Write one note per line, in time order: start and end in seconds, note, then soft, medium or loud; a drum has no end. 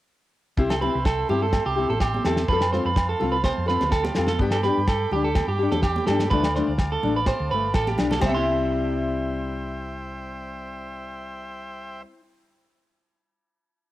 0.57 0.87 C2 loud
0.57 0.73 C4 medium
0.57 0.73 E4 medium
0.57 0.74 G4 medium
0.57 2.48 E5 medium
0.57 2.47 G5 medium
0.57 4.36 C6 medium
0.57 muted steel-string acoustic guitar stroke medium
0.57 kick medium
0.70 0.81 A4 medium
0.70 snare medium
0.70 low agogo medium
0.81 0.98 C4 soft
0.81 0.97 E4 soft
0.81 0.96 G4 medium
0.81 1.04 B4 medium
0.81 low conga medium
0.95 1.23 C2 medium
1.05 1.29 A4 medium
1.05 kick medium
1.05 snare medium
1.05 low agogo medium
1.29 1.58 G2 medium
1.29 1.46 C4 soft
1.29 1.45 E4 medium
1.29 1.44 G4 medium
1.29 1.42 G4 medium
1.29 low conga medium
1.43 1.65 A4 medium
1.53 kick medium
1.53 snare medium
1.53 high conga medium
1.53 low agogo medium
1.66 1.85 C2 medium
1.66 1.89 G4 medium
1.76 1.93 C4 soft
1.76 1.92 E4 medium
1.76 1.91 G4 medium
1.89 2.17 A1 medium
1.89 2.00 A4 medium
1.89 high conga medium
2.00 2.24 G4 medium
2.00 kick medium
2.00 snare medium
2.00 low agogo medium
2.14 high conga medium
2.25 2.44 E2 medium
2.25 2.41 C4 soft
2.25 2.41 E4 medium
2.25 2.40 G4 medium
2.25 2.48 A4 medium
2.25 snare medium
2.25 low conga medium
2.25 low agogo medium
2.37 snare medium
2.37 high conga medium
2.48 2.78 F2 loud
2.48 2.64 F3 medium
2.48 2.65 C4 medium
2.48 2.65 F4 medium
2.48 2.65 A4 medium
2.48 2.72 B4 medium
2.48 4.39 F5 medium
2.48 4.38 A5 medium
2.48 kick medium
2.61 snare medium
2.61 low agogo medium
2.73 2.89 C4 soft
2.73 2.88 F4 medium
2.73 2.88 A4 medium
2.73 2.85 C5 medium
2.73 snare soft
2.73 low conga medium
2.85 3.13 F2 loud
2.85 3.08 B4 medium
2.96 kick medium
2.96 snare medium
2.96 low agogo medium
3.09 3.31 A4 medium
3.20 3.50 C2 medium
3.20 3.37 C4 soft
3.20 3.36 F4 medium
3.20 3.35 A4 medium
3.20 low conga medium
3.32 3.43 B4 medium
3.44 3.67 C5 medium
3.44 kick medium
3.44 snare medium
3.44 high conga medium
3.44 low agogo medium
3.58 3.76 F2 medium
3.66 3.83 F4 medium
3.66 3.82 A4 medium
3.66 3.91 B4 medium
3.66 snare soft
3.70 3.84 C4 soft
3.81 4.09 D2 medium
3.81 snare soft
3.81 high conga medium
3.92 4.04 A4 medium
3.92 kick medium
3.92 snare medium
3.92 low agogo medium
4.04 4.27 G4 medium
4.04 snare soft
4.04 high conga medium
4.15 4.36 F2 medium
4.15 4.32 F4 soft
4.15 4.30 A4 medium
4.15 snare medium
4.15 low conga medium
4.15 low agogo medium
4.19 4.32 C4 soft
4.27 4.39 A4 medium
4.27 snare medium
4.27 high conga medium
4.39 4.68 G2 loud
4.39 4.54 B3 medium
4.39 4.55 D4 medium
4.39 4.55 G4 medium
4.39 6.30 G5 medium
4.39 6.30 B5 medium
4.39 8.20 D6 medium
4.39 kick medium
4.51 4.63 A4 medium
4.51 snare medium
4.51 low agogo medium
4.63 4.79 G4 medium
4.63 4.86 B4 medium
4.63 snare soft
4.63 low conga medium
4.67 4.80 D4 soft
4.78 5.05 G2 medium
4.88 5.11 A4 medium
4.88 kick medium
4.88 snare medium
4.88 low agogo medium
5.11 5.40 D2 medium
5.11 5.27 G4 medium
5.11 5.24 G4 medium
5.11 low conga medium
5.15 5.28 D4 soft
5.24 5.47 A4 medium
5.35 kick medium
5.35 snare medium
5.35 high conga medium
5.35 low agogo medium
5.48 5.66 G2 medium
5.48 5.71 G4 medium
5.59 5.76 D4 medium
5.59 5.74 G4 medium
5.72 6.00 E2 medium
5.72 5.82 A4 medium
5.72 snare soft
5.72 high conga medium
5.82 6.06 G4 medium
5.82 kick medium
5.82 snare medium
5.82 low agogo medium
5.96 high conga medium
6.07 6.26 G2 medium
6.07 6.23 D4 soft
6.07 6.22 G4 medium
6.07 6.30 A4 medium
6.07 snare medium
6.07 low conga medium
6.07 low agogo medium
6.19 snare medium
6.19 high conga medium
6.30 6.60 D2 loud
6.30 6.46 F3 medium
6.30 6.47 A3 medium
6.30 6.47 D4 medium
6.30 6.53 B4 medium
6.30 8.20 F5 medium
6.30 8.20 A5 medium
6.30 kick loud
6.30 low conga medium
6.43 snare medium
6.43 low agogo medium
6.55 6.70 D4 medium
6.55 6.67 C5 medium
6.55 snare soft
6.55 low conga medium
6.60 6.72 A3 soft
6.68 6.95 D2 medium
6.78 kick medium
6.78 snare medium
6.78 low agogo medium
6.92 7.14 A4 medium
7.03 7.31 A1 medium
7.03 7.18 D4 medium
7.03 low conga medium
7.07 7.20 A3 soft
7.16 7.27 B4 medium
7.26 7.50 C5 medium
7.26 kick medium
7.26 snare medium
7.26 high conga medium
7.26 low agogo medium
7.40 7.49 D2 medium
7.51 7.73 G1 medium
7.51 7.67 A3 soft
7.51 7.74 B4 medium
7.51 muted steel-string acoustic guitar stroke medium
7.74 7.96 A1 medium
7.74 7.87 A4 medium
7.74 kick medium
7.74 snare medium
7.74 low agogo medium
7.86 8.10 G4 medium
7.86 snare soft
7.86 high conga medium
7.98 8.21 B1 medium
7.98 8.13 D4 soft
7.98 snare medium
7.98 low conga medium
7.98 low agogo medium
8.02 muted steel-string acoustic guitar stroke soft
8.11 8.22 A4 medium
8.11 snare medium
8.11 high conga medium
8.19 12.02 C2 loud
8.19 12.03 G3 medium
8.19 8.30 C5 medium
8.19 12.02 C5 medium
8.19 12.02 E5 medium
8.19 12.01 G5 medium
8.19 kick medium
8.19 snare medium
8.19 ride bell medium
8.19 low agogo loud
8.23 12.06 E5 medium
8.23 high conga medium
8.29 12.13 C4 medium
8.29 8.34 G5 medium
8.34 12.20 E4 medium
8.34 12.14 C6 medium